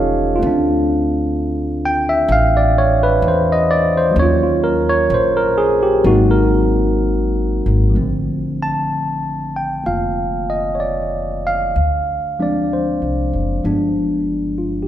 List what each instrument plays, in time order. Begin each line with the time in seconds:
Already playing: upright bass E1, tine electric piano F3 G3 C#4 D#4 F4 G4 A4 C#5 D#5 F5
0.36 tine electric piano A3 F4
0.42 upright bass D2, tine electric piano C4
0.47 tine electric piano D4
1.85 tine electric piano G5
2.09 tine electric piano E5
2.28 upright bass A1, tine electric piano F5
2.57 tine electric piano D5
2.78 tine electric piano C#5
3.03 tine electric piano B4
3.22 upright bass E2
3.28 tine electric piano C5
3.52 tine electric piano D#5
3.71 tine electric piano D5
3.97 tine electric piano C5
4.11 tine electric piano F#3 A#3
4.16 upright bass D#2, tine electric piano C#4 C#5
4.22 tine electric piano F4
4.43 tine electric piano F4
4.64 tine electric piano A#4
4.89 tine electric piano C#5
5.10 upright bass A#1
5.14 tine electric piano C5
5.37 tine electric piano A#4
5.58 tine electric piano G#4
5.83 tine electric piano G4
6.04 upright bass G#1, tine electric piano F#3 A#3 C4 D#4 F#4
6.31 tine electric piano A#4
7.66 upright bass G#1
7.90 tine electric piano F3
7.94 upright bass A#1, tine electric piano A3 C4
8.01 tine electric piano D3
8.62 tine electric piano A5
9.56 tine electric piano G5
9.84 upright bass F1, tine electric piano A#3 F4 F5
10.50 tine electric piano D#5
10.75 tine electric piano C#5
10.80 tine electric piano D5
11.47 tine electric piano F5
11.76 upright bass D2
12.39 tine electric piano F3 G#3 C4 D4 D5
12.73 tine electric piano C5
13.02 upright bass C2
13.33 upright bass F#1
13.64 upright bass G1, tine electric piano F3 G#3 B3 D4
14.58 tine electric piano F4
14.83 tine electric piano G4